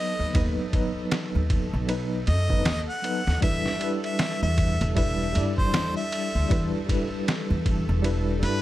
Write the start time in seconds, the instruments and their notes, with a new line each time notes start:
Already playing: tine electric piano F#3 B3 D#4 B4, synth drone A4, harmonica D#5
0.19 upright bass D#2
0.33 upright bass D#2, tine electric piano F#3 B3 D#4 B4, kick, ride
0.71 tine electric piano F#3 B3 D#4, kick, ride
0.76 tine electric piano B4
1.11 snare, ride
1.35 upright bass D#2
1.50 kick, ride
1.73 upright bass B1
1.87 tine electric piano F#3 B3 D#4 B4, ride
2.27 upright bass F#2, harmonica D#5, ride
2.48 tine electric piano F#3 B3 D#4 B4, kick
2.65 upright bass D#2, snare, ride
2.89 harmonica F#5
3.02 tine electric piano F#3 B3 D#4 B4, ride
3.27 upright bass D#2, snare
3.41 upright bass E2, tine electric piano G3 D4 E4 B4, harmonica E5, kick, ride
3.66 snare
3.79 tine electric piano G3 D4 E4, ride
3.84 tine electric piano B4
4.04 harmonica E5, ride
4.19 snare, ride
4.43 upright bass E2, harmonica E5
4.58 kick, ride
4.81 upright bass E1, ride
4.95 tine electric piano G3 D4 E4 B4, harmonica E5, kick, ride
5.32 upright bass G2, tine electric piano G3 D4 E4, ride
5.37 tine electric piano D5
5.58 harmonica C5, kick
5.74 upright bass E2, snare, ride
5.97 harmonica E5
6.12 ride
6.35 upright bass D2
6.49 upright bass E2, tine electric piano G3 D4 E4 B4, kick, ride
6.86 tine electric piano G3 D4 E4, kick, ride
6.91 tine electric piano B4
7.28 snare, ride
7.50 upright bass E2
7.66 kick, ride
7.89 upright bass E1
8.02 tine electric piano G3 D4 E4 B4, ride
8.40 upright bass G2, tine electric piano G3 D4 E4, ride
8.44 harmonica B4, tine electric piano B4